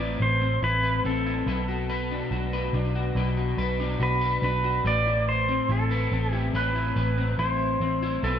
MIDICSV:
0, 0, Header, 1, 4, 480
1, 0, Start_track
1, 0, Tempo, 845070
1, 834, Time_signature, 4, 2, 24, 8
1, 4767, End_track
2, 0, Start_track
2, 0, Title_t, "Electric slide guitar"
2, 0, Program_c, 0, 29
2, 0, Note_on_c, 0, 74, 90
2, 124, Note_off_c, 0, 74, 0
2, 126, Note_on_c, 0, 72, 87
2, 361, Note_off_c, 0, 72, 0
2, 363, Note_on_c, 0, 71, 103
2, 602, Note_off_c, 0, 71, 0
2, 604, Note_on_c, 0, 69, 72
2, 1536, Note_off_c, 0, 69, 0
2, 2287, Note_on_c, 0, 71, 106
2, 2517, Note_off_c, 0, 71, 0
2, 2524, Note_on_c, 0, 71, 86
2, 2765, Note_off_c, 0, 71, 0
2, 2767, Note_on_c, 0, 74, 125
2, 3000, Note_off_c, 0, 74, 0
2, 3003, Note_on_c, 0, 72, 103
2, 3245, Note_off_c, 0, 72, 0
2, 3247, Note_on_c, 0, 69, 85
2, 3599, Note_off_c, 0, 69, 0
2, 3599, Note_on_c, 0, 67, 85
2, 3725, Note_off_c, 0, 67, 0
2, 3727, Note_on_c, 0, 71, 108
2, 4196, Note_off_c, 0, 71, 0
2, 4198, Note_on_c, 0, 72, 91
2, 4653, Note_off_c, 0, 72, 0
2, 4680, Note_on_c, 0, 69, 93
2, 4767, Note_off_c, 0, 69, 0
2, 4767, End_track
3, 0, Start_track
3, 0, Title_t, "Clean electric guitar"
3, 0, Program_c, 1, 27
3, 0, Note_on_c, 1, 45, 78
3, 0, Note_on_c, 1, 60, 60
3, 0, Note_on_c, 1, 64, 68
3, 0, Note_on_c, 1, 71, 77
3, 228, Note_off_c, 1, 60, 0
3, 235, Note_on_c, 1, 60, 60
3, 252, Note_off_c, 1, 71, 0
3, 349, Note_off_c, 1, 64, 0
3, 356, Note_on_c, 1, 64, 60
3, 475, Note_on_c, 1, 71, 67
3, 590, Note_off_c, 1, 60, 0
3, 597, Note_on_c, 1, 60, 67
3, 711, Note_off_c, 1, 64, 0
3, 718, Note_on_c, 1, 64, 65
3, 833, Note_off_c, 1, 45, 0
3, 835, Note_on_c, 1, 47, 75
3, 838, Note_off_c, 1, 71, 0
3, 840, Note_on_c, 1, 71, 67
3, 883, Note_off_c, 1, 60, 0
3, 884, Note_off_c, 1, 64, 0
3, 955, Note_on_c, 1, 66, 60
3, 1074, Note_off_c, 1, 71, 0
3, 1077, Note_on_c, 1, 71, 72
3, 1197, Note_on_c, 1, 62, 60
3, 1310, Note_off_c, 1, 66, 0
3, 1317, Note_on_c, 1, 66, 56
3, 1436, Note_off_c, 1, 71, 0
3, 1439, Note_on_c, 1, 71, 67
3, 1551, Note_off_c, 1, 62, 0
3, 1558, Note_on_c, 1, 62, 57
3, 1671, Note_off_c, 1, 66, 0
3, 1678, Note_on_c, 1, 66, 64
3, 1789, Note_off_c, 1, 47, 0
3, 1796, Note_on_c, 1, 47, 82
3, 1799, Note_off_c, 1, 71, 0
3, 1801, Note_on_c, 1, 71, 65
3, 1909, Note_off_c, 1, 66, 0
3, 1915, Note_on_c, 1, 66, 60
3, 2033, Note_off_c, 1, 71, 0
3, 2035, Note_on_c, 1, 71, 75
3, 2151, Note_off_c, 1, 62, 0
3, 2157, Note_on_c, 1, 62, 66
3, 2267, Note_off_c, 1, 66, 0
3, 2274, Note_on_c, 1, 66, 65
3, 2391, Note_off_c, 1, 71, 0
3, 2393, Note_on_c, 1, 71, 71
3, 2510, Note_off_c, 1, 62, 0
3, 2517, Note_on_c, 1, 62, 71
3, 2628, Note_off_c, 1, 66, 0
3, 2635, Note_on_c, 1, 66, 58
3, 2751, Note_off_c, 1, 47, 0
3, 2753, Note_on_c, 1, 45, 78
3, 2756, Note_off_c, 1, 71, 0
3, 2759, Note_on_c, 1, 71, 68
3, 2803, Note_off_c, 1, 62, 0
3, 2803, Note_off_c, 1, 66, 0
3, 2875, Note_on_c, 1, 64, 61
3, 3115, Note_on_c, 1, 60, 63
3, 3132, Note_off_c, 1, 71, 0
3, 3228, Note_off_c, 1, 64, 0
3, 3235, Note_on_c, 1, 64, 63
3, 3355, Note_on_c, 1, 71, 60
3, 3467, Note_off_c, 1, 60, 0
3, 3474, Note_on_c, 1, 60, 62
3, 3587, Note_off_c, 1, 64, 0
3, 3593, Note_on_c, 1, 64, 69
3, 3709, Note_off_c, 1, 45, 0
3, 3715, Note_on_c, 1, 45, 80
3, 3717, Note_off_c, 1, 71, 0
3, 3719, Note_on_c, 1, 71, 70
3, 3831, Note_off_c, 1, 64, 0
3, 3838, Note_on_c, 1, 64, 62
3, 3953, Note_off_c, 1, 71, 0
3, 3955, Note_on_c, 1, 71, 72
3, 4069, Note_off_c, 1, 60, 0
3, 4076, Note_on_c, 1, 60, 61
3, 4189, Note_off_c, 1, 64, 0
3, 4196, Note_on_c, 1, 64, 65
3, 4431, Note_off_c, 1, 60, 0
3, 4438, Note_on_c, 1, 60, 65
3, 4455, Note_off_c, 1, 71, 0
3, 4551, Note_off_c, 1, 64, 0
3, 4558, Note_on_c, 1, 64, 69
3, 4673, Note_off_c, 1, 45, 0
3, 4675, Note_on_c, 1, 47, 81
3, 4680, Note_on_c, 1, 71, 63
3, 4724, Note_off_c, 1, 60, 0
3, 4724, Note_off_c, 1, 64, 0
3, 4767, Note_off_c, 1, 47, 0
3, 4767, Note_off_c, 1, 71, 0
3, 4767, End_track
4, 0, Start_track
4, 0, Title_t, "Picked electric bass"
4, 0, Program_c, 2, 34
4, 0, Note_on_c, 2, 33, 107
4, 87, Note_off_c, 2, 33, 0
4, 115, Note_on_c, 2, 33, 95
4, 326, Note_off_c, 2, 33, 0
4, 354, Note_on_c, 2, 33, 95
4, 565, Note_off_c, 2, 33, 0
4, 593, Note_on_c, 2, 33, 84
4, 805, Note_off_c, 2, 33, 0
4, 832, Note_on_c, 2, 35, 108
4, 1256, Note_off_c, 2, 35, 0
4, 1313, Note_on_c, 2, 35, 103
4, 1525, Note_off_c, 2, 35, 0
4, 1552, Note_on_c, 2, 35, 97
4, 1764, Note_off_c, 2, 35, 0
4, 1790, Note_on_c, 2, 35, 103
4, 2003, Note_off_c, 2, 35, 0
4, 2031, Note_on_c, 2, 35, 110
4, 2243, Note_off_c, 2, 35, 0
4, 2271, Note_on_c, 2, 35, 93
4, 2483, Note_off_c, 2, 35, 0
4, 2511, Note_on_c, 2, 35, 108
4, 2724, Note_off_c, 2, 35, 0
4, 2752, Note_on_c, 2, 33, 106
4, 3176, Note_off_c, 2, 33, 0
4, 3233, Note_on_c, 2, 33, 108
4, 3445, Note_off_c, 2, 33, 0
4, 3474, Note_on_c, 2, 33, 101
4, 3685, Note_off_c, 2, 33, 0
4, 3712, Note_on_c, 2, 33, 94
4, 3924, Note_off_c, 2, 33, 0
4, 3954, Note_on_c, 2, 33, 101
4, 4165, Note_off_c, 2, 33, 0
4, 4193, Note_on_c, 2, 33, 94
4, 4405, Note_off_c, 2, 33, 0
4, 4432, Note_on_c, 2, 33, 94
4, 4644, Note_off_c, 2, 33, 0
4, 4676, Note_on_c, 2, 35, 106
4, 4767, Note_off_c, 2, 35, 0
4, 4767, End_track
0, 0, End_of_file